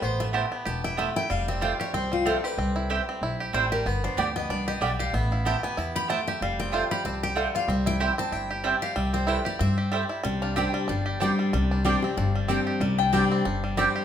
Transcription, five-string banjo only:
X:1
M:4/4
L:1/8
Q:"Swing" 1/4=188
K:C
V:1 name="Five-string banjo"
B, A, G B, G E A, E | G, C F G C G, C G | C E G C E G G, G | B, D G B, D G G, G |
B, E G B, E G A, G | G, C F G C G G, F | C E G C E G G, G | G, C E G C G G, E |
G, D G G, D G D G, | G, D G, C D G, C G | G, D G, C D G, C G |]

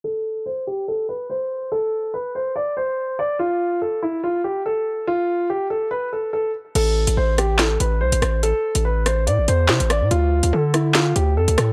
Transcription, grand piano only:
X:1
M:4/4
L:1/8
Q:1/4=143
K:Am
V:1 name="Grand piano"
A2 c G A B c2 | A2 B c d c2 d | F2 A E F G A2 | F2 G A B A A z |
A2 c G A B c2 | A2 B c d c2 d | F2 A E F G A2 |]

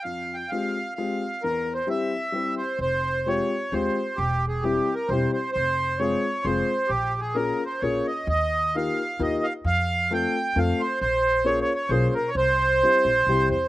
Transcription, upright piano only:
X:1
M:3/4
L:1/8
Q:1/4=132
K:Fm
V:1 name="Upright piano"
F,,2 [A,CFG] z [A,CFG] z | =E,,2 [G,C=EG] z [G,CEG] z | z2 [A,CFG] z [A,CFG] z | z2 [G,C=EG] z [G,CEG] z |
z2 [A,CFA] z [A,CFA] z | z2 [B,DFA] z [B,DFA] z | z2 [B,EFG] z [B,EFG] z | z2 [=A,CF=A] z [A,CFA] z |
z2 [B,DFA] z [B,DFA] z | z2 [G,C=EG] z [G,CEG] z |]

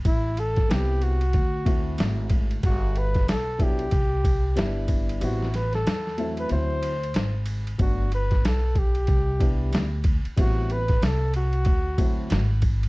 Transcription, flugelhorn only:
X:1
M:4/4
L:1/16
Q:"Swing 16ths" 1/4=93
K:Ador
V:1 name="Flugelhorn"
E2 A2 G2 F8 z2 | F2 B2 A2 G8 z2 | F2 B A4 B c6 z2 | F2 B2 A2 G8 z2 |
F2 B2 A2 F8 z2 |]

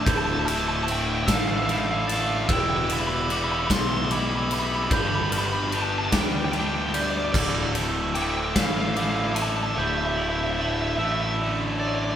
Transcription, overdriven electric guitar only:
X:1
M:6/8
L:1/8
Q:3/8=49
K:Ddor
V:1 name="Overdriven electric guitar" clef=bass
[D,,A,,D,A,E] [D,A,E] [A,,D,A,E] [D,,A,,D,A,E] [A,,D,A,E]2 | [E,,B,,E,G,B,E] [E,G,B,E] [E,G,B,E] [E,,B,,E,G,B,E] [E,G,B,E]2 | [G,,D,G,B,DG] [G,B,DG] [G,B,DG] [G,,D,G,B,DG] [G,B,DG]2 | [D,,A,,D,A,E] [D,A,E] [A,,D,A,E] [D,,A,,D,A,E] [A,,D,A,E]2 |
[D,,A,,D,A,E] [D,A,E] [A,,D,A,E] [D,,A,,D,A,E] [A,,D,A,E]2 |]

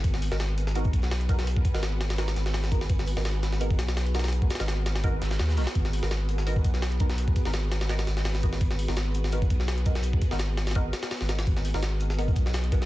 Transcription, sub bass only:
X:1
M:4/4
L:1/16
Q:"Swing 16ths" 1/4=168
K:G#m
V:1 name="Sub bass" clef=bass
G,,,3 G,,,6- G,,, B,,,6- | B,,,2 z G,,,6- G,,, G,,,6 | G,,,3 G,,,6- G,,, B,,,6- | B,,,2 z G,,,6- G,,, G,,,2 D,,2 B,,, z |
G,,,3 G,,,6- G,,, B,,,6- | B,,,2 z G,,,6- G,,, G,,,6 | G,,,3 G,,,6- G,,, B,,,6- | B,,,2 z G,,,6- G,,, z3 G,,,3 |
G,,,3 G,,,6- G,,, B,,,6 |]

